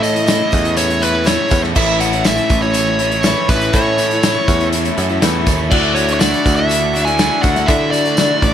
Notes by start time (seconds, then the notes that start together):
Already playing: A2 E3 A3 C#4 E4 A4 C#5
0.02 A3 C#4 E4 D#5, closed hi-hat, tambourine
0.13 A3 C#4 E4, closed hi-hat
0.26 A2 E3 A3 C#4 E4, snare, closed hi-hat, tambourine
0.51 E2 E3 A3 C#4 E4, kick, closed hi-hat, tambourine
0.64 A3 C#4 E4, closed hi-hat
0.76 E3 A3 C#4 E4 C#5, closed hi-hat, tambourine
0.88 A3 C#4 E4, closed hi-hat, tambourine
1.00 E3 A3 C#4 E4 B4, closed hi-hat
1.12 A3 C#4 E4, tambourine
1.24 A2 E3 A3 C#4 E4 C#5, snare, closed hi-hat, tambourine
1.49 E2 E3 A3 C#4 E4, kick, closed hi-hat, tambourine
1.62 A3 C#4 E4, snare, tambourine
1.75 A1 A2 E3 A3 C#4 E4 E5, kick, crash
2.00 A3 C#4 E4 F#5, closed hi-hat, tambourine
2.12 A3 C#4 E4, closed hi-hat
2.24 A2 E3 A3 C#4 E4 E5, snare, closed hi-hat, tambourine
2.37 closed hi-hat, tambourine
2.49 A1 E3 A3 C#4 E4, kick, closed hi-hat, tambourine
2.61 A3 C#4 E4 C#5, tambourine
2.73 E3 A3 C#4 E4, closed hi-hat, tambourine
2.86 A3 C#4 E4, tambourine
2.99 E3 A3 C#4 E4, closed hi-hat
3.12 A3 C#4 E4, closed hi-hat
3.23 A2 E3 A3 C#4, snare, closed hi-hat, tambourine
3.27 E4
3.36 tambourine
3.49 A1 E3 A3 C#4 B4, kick, closed hi-hat, tambourine
3.53 E4
3.61 closed hi-hat, tambourine
3.73 A2 E3 A3 C#4 E4 C#5, kick, closed hi-hat
3.86 tambourine
3.98 A3 C#4 E4, closed hi-hat, tambourine
4.11 A3 C#4 E4, closed hi-hat
4.23 A2 E3 A3 C#4 E4, snare, closed hi-hat, tambourine
4.36 tambourine
4.48 E2 E3 A3 C#4 E4, kick, closed hi-hat, tambourine
4.61 A3 C#4 E4, closed hi-hat, tambourine
4.72 E3 A3 C#4 E4, closed hi-hat, tambourine
4.85 A3 C#4 E4, closed hi-hat, tambourine
4.97 F#2 E3 A3 C#4 E4, closed hi-hat, tambourine
5.09 A3 C#4 E4, tambourine
5.22 E2 A2 E3 A3 C#4 E4, snare, closed hi-hat, tambourine
5.35 tambourine
5.46 D#2 E3 A3 C#4 E4, kick, closed hi-hat, tambourine
5.58 A3 C#4 E4, tambourine
5.71 D2 D3 F#3 A3 D4 E4 F#4 D5 F#5, kick, crash
5.95 A3 D4 F#4 C#5, closed hi-hat, tambourine
6.07 A3 D4 E4, closed hi-hat
6.14 C#5
6.19 D3 F#3 A3 D4 E4 F#4 D5, snare, closed hi-hat, tambourine
6.33 closed hi-hat, tambourine
6.44 D2 F#3 A3 D4 E4, kick, closed hi-hat, tambourine
6.56 A3 D4 E4 E5, tambourine
6.69 F#3 A3 D4 E4, closed hi-hat, tambourine
6.81 A3 D4 E4
6.93 F#3 A3 D4 E4 F#4, closed hi-hat
7.05 A3 D4 E4 G#5, closed hi-hat, tambourine
7.18 D3 F#3 A3 D4 E4 F#4, snare, closed hi-hat, tambourine
7.31 tambourine
7.42 D2 F#3 A3 D4 E4 F#4 F#5, kick, closed hi-hat, tambourine
7.55 A3 D4 E4, snare, closed hi-hat, tambourine
7.67 D3 F#3 A3 D4 E4 F#4 E5, kick, closed hi-hat
7.91 A3 D4 F#4 D5, closed hi-hat, tambourine
8.05 A3 D4 E4, closed hi-hat
8.17 D3 F#3 A3 D4 E4 F#4, snare, closed hi-hat, tambourine
8.29 tambourine
8.42 A1 F#3 A3 D4 E4, kick, closed hi-hat